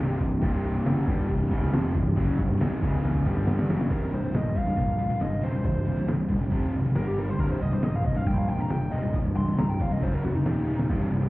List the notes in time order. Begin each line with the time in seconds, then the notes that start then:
Already playing: D#3 A#3 G4
0.00 C1 C2 G2 C3
0.20 C1 C2 G2, kick, open hi-hat
0.42 C1 C2 G2 C3, kick, crash
0.64 open hi-hat
0.85 F#1 F#2 C#3 F#3, snare, open hi-hat
1.07 G1 G2 D3 G3, kick, open hi-hat
1.29 C1 C2 G2, kick, open hi-hat
1.51 C#1 C#2 G#2 C#3, kick, open hi-hat
1.73 F1 F2 C3 F3, snare, open hi-hat
1.95 C1 C2 G2, kick, open hi-hat
2.16 F#1 F#2 C#3 F#3, kick, open hi-hat
2.38 C1 C2 G2, kick, open hi-hat
2.60 G#1 G#2 D#3 G#3, snare, open hi-hat
2.81 C#1 C#2 G#2 C#3 G#3 G#4, kick, open hi-hat
3.04 snare, open hi-hat
3.15 kick
3.25 G1 G2 D3 G3 G4, open hi-hat, mid tom
3.37 mid tom
3.47 snare, open hi-hat
3.59 snare
3.69 F#1 F#2 C#3 D#3 F#3 C4 G4, snare, open hi-hat
3.81 snare
3.90 C1 C2 G2 C3 A#4, kick, open hi-hat, crash
4.13 C1 C2 G2 C5
4.24 C2 G2
4.34 A#1 C2 G2 D#5, snare, open hi-hat
4.56 C1 C2 G2 F5, kick
4.67 C2 G2
4.77 A#1 C2 G2, kick, open hi-hat
4.99 C2 G2
5.10 C2 G2
5.21 G1 C2 G2 D#5, snare, open hi-hat
5.43 D#1 C2 G2 C3 C5
5.54 C2 G2
5.64 C1 C2 G2 C5, kick, open hi-hat
5.87 C1 C2 G2
5.98 C2 G2
6.08 C1 C2 G2, snare, open hi-hat
6.30 D#1 C2 G2, kick
6.41 C2 G2
6.51 F1 F2 C3 F3, kick, open hi-hat
6.73 G#1 F2 C3, snare
6.86 F2 C3
6.95 G1 G2 D3 G3 A#4, snare, open hi-hat
7.08 G4
7.18 G2 D3 G3 A#4
7.29 G2 D3 C5
7.39 C1 C2 G2 C3 A#4, kick, open hi-hat
7.51 C5
7.60 C1 C2 G2 D#5
7.72 C2 G2 C5
7.82 A#1 C2 G2 D#5, snare, open hi-hat
7.96 F5
8.05 C1 C2 G2 D#5, kick
8.16 C2 G2 F5
8.26 A#1 C2 G2 G5, kick, open hi-hat
8.38 F5
8.48 C2 G2 G5
8.59 C2 G2 A#5
8.70 G1 C2 G2 G5, snare, open hi-hat
8.91 D#1 C2 G2 C3 D#5
9.03 C2 G2
9.13 C1 C2 G2, kick, open hi-hat
9.36 C1 C2 G2 C6
9.47 C2 G2
9.57 C1 C2 G2 A#5, snare, open hi-hat
9.70 G5
9.80 C1 C2 G2 F5, kick
9.90 C2 G2 D#5
10.01 F#1 F#2 C#3 F#3 C5, kick, open hi-hat
10.14 A#4
10.24 F1 F#2 C#3 F#4, snare
10.34 F#2 C#3 D#4
10.45 D#1 D#2 A#2 D#3 D#4, snare, open hi-hat
10.67 D#2 A#2 D#3, high tom
10.78 D#2 A#2, snare
10.88 C1 C2 G2 C3, kick, open hi-hat
11.11 C1 C2 G2
11.21 C2 G2